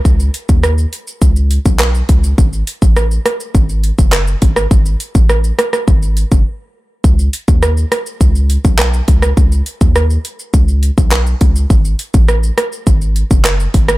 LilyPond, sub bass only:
\new Staff \with { instrumentName = "Sub bass" } { \clef bass \time 4/4 \key b \mixolydian \tempo 4 = 103 cis,8 r16 dis,8. r8 cis,8. b,,8. cis,8 | gis,,8 r16 a,,8. r8 gis,,8. fis,,8. gis,,8 | gis,,8 r16 a,,8. r8 gis,,8. fis,,16 r4 | cis,8 r16 dis,8. r8 cis,8. b,,8. cis,8 |
cis,8 r16 dis,8. r8 cis,8. b,,8. cis,8 | gis,,8 r16 a,,8. r8 gis,,8. fis,,8. gis,,8 | }